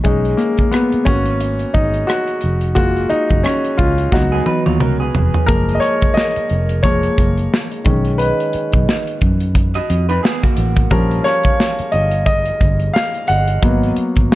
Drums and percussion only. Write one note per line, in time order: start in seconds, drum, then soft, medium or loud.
0.04 kick loud
0.04 closed hi-hat medium
0.25 closed hi-hat soft
0.38 cross-stick soft
0.38 closed hi-hat medium
0.58 kick medium
0.58 closed hi-hat soft
0.73 cross-stick medium
0.73 closed hi-hat medium
0.92 closed hi-hat soft
1.06 kick medium
1.06 closed hi-hat medium
1.26 closed hi-hat medium
1.40 closed hi-hat medium
1.59 closed hi-hat soft
1.74 kick medium
1.74 closed hi-hat medium
1.94 closed hi-hat soft
2.09 cross-stick loud
2.09 closed hi-hat medium
2.28 closed hi-hat soft
2.41 closed hi-hat medium
2.61 closed hi-hat soft
2.76 kick loud
2.76 closed hi-hat medium
2.97 closed hi-hat soft
3.10 closed hi-hat medium
3.29 kick medium
3.29 closed hi-hat soft
3.44 cross-stick loud
3.44 closed hi-hat medium
3.65 closed hi-hat soft
3.78 kick medium
3.78 closed hi-hat medium
3.98 closed hi-hat medium
4.12 kick medium
4.12 snare medium
4.46 high tom medium
4.66 high tom medium
4.80 mid tom medium
5.15 floor tom medium
5.34 floor tom medium
5.48 kick loud
5.48 closed hi-hat medium
5.69 closed hi-hat soft
5.82 closed hi-hat medium
6.02 kick medium
6.02 closed hi-hat soft
6.17 snare loud
6.36 closed hi-hat medium
6.50 closed hi-hat medium
6.69 closed hi-hat medium
6.84 kick medium
6.84 closed hi-hat medium
7.03 closed hi-hat medium
7.18 kick medium
7.18 closed hi-hat medium
7.38 closed hi-hat soft
7.54 snare loud
7.72 closed hi-hat soft
7.85 kick medium
7.85 closed hi-hat medium
8.05 closed hi-hat soft
8.19 closed hi-hat medium
8.40 closed hi-hat soft
8.53 closed hi-hat medium
8.72 kick medium
8.72 closed hi-hat soft
8.89 snare medium
9.07 closed hi-hat medium
9.21 kick medium
9.21 closed hi-hat medium
9.40 closed hi-hat medium
9.55 kick medium
9.55 closed hi-hat medium
9.74 closed hi-hat medium
9.90 closed hi-hat medium
10.09 closed hi-hat soft
10.25 snare loud
10.43 kick medium
10.43 closed hi-hat soft
10.57 closed hi-hat medium
10.76 kick medium
10.76 closed hi-hat soft
10.90 kick loud
10.90 closed hi-hat medium
11.11 closed hi-hat soft
11.25 snare soft
11.25 closed hi-hat medium
11.43 kick medium
11.43 closed hi-hat soft
11.60 snare medium
11.79 closed hi-hat medium
11.92 closed hi-hat medium
12.11 closed hi-hat medium
12.26 kick medium
12.26 closed hi-hat medium
12.45 closed hi-hat medium
12.61 kick medium
12.61 closed hi-hat medium
12.80 closed hi-hat medium
12.96 snare loud
13.14 closed hi-hat soft
13.27 closed hi-hat medium
13.48 closed hi-hat soft
13.62 kick loud
13.62 closed hi-hat medium
13.83 closed hi-hat soft
13.96 closed hi-hat medium
14.16 kick medium
14.16 closed hi-hat soft